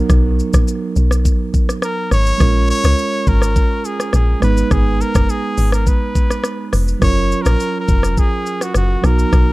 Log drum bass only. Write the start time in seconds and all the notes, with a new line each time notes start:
0.10 B1
0.54 A#1
0.96 B1
2.12 G#1
2.40 A#1
2.84 C#2
3.27 G#1
4.14 A#1
4.42 G#1
4.71 G#1
5.15 F#1
5.58 G#1
6.73 F1
7.02 F#1
7.46 A#1
7.89 F1
8.75 F#1
9.04 B1
9.33 B1